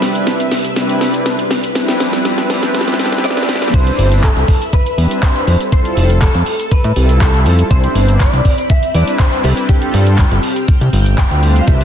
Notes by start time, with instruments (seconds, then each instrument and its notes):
Already playing: string machine C3 B4 E5, analog synth pad G3 C4 D4 E4 B4
0.02 snare, open hi-hat
0.14 analog synth pad G3 C4 D4 E4 B4, closed hi-hat, cabasa
0.27 snare, closed hi-hat, cabasa
0.40 closed hi-hat, cabasa
0.52 snare, open hi-hat
0.65 closed hi-hat, cabasa
0.76 analog synth pad G3 C4 D4 E4 B4, snare, closed hi-hat, cabasa
0.89 closed hi-hat, cabasa
1.01 snare, open hi-hat
1.13 analog synth pad G3 C4 D4 E4 B4, closed hi-hat, cabasa
1.26 snare, closed hi-hat, cabasa
1.39 closed hi-hat, cabasa
1.51 snare, open hi-hat
1.64 closed hi-hat, cabasa
1.75 string machine F3 G3 C4, analog synth pad G3 C4 D4 E4 B4, snare, closed hi-hat, cabasa
1.88 snare, closed hi-hat, cabasa
2.00 snare, open hi-hat
2.13 analog synth pad G3 C4 D4 E4 B4, snare, closed hi-hat, cabasa
2.24 analog synth pad G3 C4 D4 E4 B4, snare, closed hi-hat, cabasa
2.38 snare, closed hi-hat, cabasa
2.50 snare, open hi-hat
2.62 analog synth pad G3 C4 D4 E4 B4, snare, closed hi-hat, cabasa
2.74 analog synth pad G3 C4 D4 E4 B4, snare, closed hi-hat, cabasa
2.81 snare
2.88 snare, closed hi-hat, cabasa
2.94 snare
2.98 analog synth pad G3 C4 D4 E4 B4, snare, open hi-hat
3.06 snare
3.12 snare, closed hi-hat, cabasa
3.18 snare
3.24 analog synth pad G3 C4 D4 E4 B4, clean electric guitar D5, snare, closed hi-hat, cabasa
3.30 snare
3.37 snare, closed hi-hat, cabasa
3.43 snare
3.49 analog synth pad G3 C4 D4 E4 B4, snare, open hi-hat
3.55 snare
3.62 snare, closed hi-hat, cabasa
3.68 snare
3.74 analog synth bass C2, analog synth pad G3 C4 D4 E4 C5, clean electric guitar C5, string machine E5 B5, kick, closed hi-hat, crash, cabasa
3.87 closed hi-hat, cabasa
3.98 analog synth bass G1, open hi-hat
4.12 analog synth pad G3 C4 D4 E4 B4, closed hi-hat, cabasa
4.23 clean electric guitar A4, kick, clap, closed hi-hat, cabasa
4.36 analog synth bass C2, closed hi-hat, cabasa
4.48 kick, open hi-hat
4.62 closed hi-hat, cabasa
4.73 clean electric guitar B4, kick, closed hi-hat, cabasa
4.86 closed hi-hat, cabasa
4.98 analog synth bass E2, analog synth pad G3 C4 D4 E4 B4, open hi-hat
5.11 closed hi-hat, cabasa
5.23 clean electric guitar C5, kick, clap, closed hi-hat, cabasa
5.36 closed hi-hat, cabasa
5.47 analog synth bass F2, string machine A4 E6, open hi-hat
5.61 closed hi-hat, cabasa
5.72 analog synth pad G3 C4 E4 F4 A4, clean electric guitar C5, kick, closed hi-hat, cabasa
5.85 closed hi-hat, cabasa
5.97 analog synth bass F1, open hi-hat
6.10 analog synth pad G3 C4 E4 F4 A4, closed hi-hat, cabasa
6.22 clean electric guitar A4, kick, clap, closed hi-hat, cabasa
6.35 analog synth bass F2, closed hi-hat, cabasa
6.46 open hi-hat
6.60 closed hi-hat, cabasa
6.71 clean electric guitar B4, kick, closed hi-hat, cabasa
6.84 analog synth bass A2, closed hi-hat, cabasa
6.96 analog synth bass C2, analog synth pad G3 C4 E4 F4 A4, open hi-hat
7.09 closed hi-hat, cabasa
7.21 clean electric guitar A4, kick, clap, closed hi-hat, cabasa
7.34 closed hi-hat, cabasa
7.46 analog synth bass F2, open hi-hat
7.59 closed hi-hat, cabasa
7.70 analog synth bass C2, analog synth pad G3 C4 D4 E4 C5, string machine C4 B5, clean electric guitar C5, kick, closed hi-hat, cabasa
7.84 closed hi-hat, cabasa
7.95 analog synth bass G1, open hi-hat
8.08 analog synth pad G3 C4 D4 E4 B4, closed hi-hat, cabasa
8.20 clean electric guitar D5, kick, clap, closed hi-hat, cabasa
8.33 analog synth bass C2, closed hi-hat, cabasa
8.45 kick, open hi-hat
8.58 closed hi-hat, cabasa
8.70 clean electric guitar E5, kick, closed hi-hat, cabasa
8.83 closed hi-hat, cabasa
8.94 analog synth bass E2, analog synth pad G3 C4 D4 E4 B4, clean electric guitar D5, open hi-hat
9.08 closed hi-hat, cabasa
9.19 clean electric guitar C5, kick, clap, closed hi-hat, cabasa
9.32 closed hi-hat, cabasa
9.44 analog synth bass C2, clean electric guitar A4, open hi-hat
9.57 closed hi-hat, cabasa
9.69 analog synth pad G3 C4 D4 F4 A4, clean electric guitar G4, string machine G5 F6, kick, closed hi-hat, cabasa
9.82 closed hi-hat, cabasa
9.94 analog synth bass G2, open hi-hat
10.06 analog synth pad G3 C4 D4 F4 A4, closed hi-hat, cabasa
10.18 kick, clap, closed hi-hat, cabasa
10.31 analog synth bass G1, closed hi-hat, cabasa
10.43 open hi-hat
10.56 closed hi-hat, cabasa
10.68 kick, closed hi-hat, cabasa
10.81 analog synth bass C2, closed hi-hat, cabasa
10.93 analog synth bass G1, open hi-hat
11.06 closed hi-hat, cabasa
11.18 clean electric guitar G5, kick, clap, closed hi-hat, cabasa
11.30 analog synth bass D2, analog synth pad G3 C4 D4 F4 B4, closed hi-hat, cabasa
11.42 analog synth pad G3 C4 D4 F4 C5, open hi-hat
11.56 closed hi-hat, cabasa
11.61 clean electric guitar F5
11.67 analog synth bass C2, analog synth pad G3 C4 D4 E4 B4, clean electric guitar E5, string machine B5 E6, kick, closed hi-hat, cabasa
11.81 closed hi-hat, cabasa